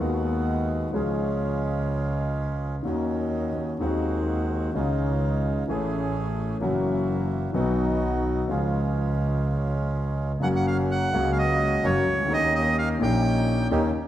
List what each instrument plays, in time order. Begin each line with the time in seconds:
Already playing: grand piano D#3
0.00 double bass D#2, grand piano D#2 G#3 B3 F#4, bandoneon G#3 B3 F#4
0.91 double bass C#2, grand piano C#2 C#3 F3 G#3 C#4 G#4, bandoneon G#3 C#4 F4
2.83 double bass D#2, grand piano D#2 D#3 A#3 C#4, bandoneon F#3 C#4 D#4
2.87 grand piano F#4
3.79 grand piano D#2 D#3 G#3 C4, double bass D#2, bandoneon G#3 C4 F#4
3.83 grand piano F#4
4.72 grand piano C#2 C#3 D#3 G#3 C#4 F4, double bass C#2, bandoneon C#4 D#4 F4
5.67 double bass A1, grand piano A1 A2 E3 A3 C#4 G#4, bandoneon A3 C#4 G#4
6.60 double bass F#1, grand piano F#2 E3 F#3 A#3 C#4 F#4, bandoneon A#3 E4 F#4
7.52 grand piano B1 B2 D#3 F#3 B3 F#4, double bass B1, bandoneon B3 D#4 F#4
8.48 double bass C#2, grand piano C#2 C#3 F3 G#3, bandoneon G#3 C#4 F4
8.52 grand piano F4
10.40 double bass F#1, grand piano F#2 C#3 F#3 A#3, bandoneon A#3 C#4 F#4 F#5
10.44 grand piano F#4
10.56 bandoneon F#5
10.67 bandoneon F5
10.91 bandoneon F#5
11.11 double bass C#2, grand piano C#2 C#3 F#3 A#3, bandoneon A#3 C#4 F#4
11.16 grand piano F#4
11.32 bandoneon F5
11.38 bandoneon D#5
11.83 double bass F#1, grand piano F#2 C#3 F#3 A#3 F#4, bandoneon A#3 C#4 F#4 C#5
12.07 double bass C#2
12.12 grand piano C2
12.18 grand piano C#2
12.25 grand piano D2 D#3
12.29 grand piano D#2 A#3 C#4 G4, double bass D#2, bandoneon C#4 D#4 G4
12.33 bandoneon D#5
12.55 bandoneon D#5
12.79 bandoneon F5
12.99 grand piano A#1 A#2 D#3 A#3 C#4, double bass A#1, bandoneon C#4 D#4 G4
13.03 grand piano G4, bandoneon G5
13.71 double bass D#2, grand piano D#2 D#3 A#3 C#4 G4, bandoneon C#4 D#4 G4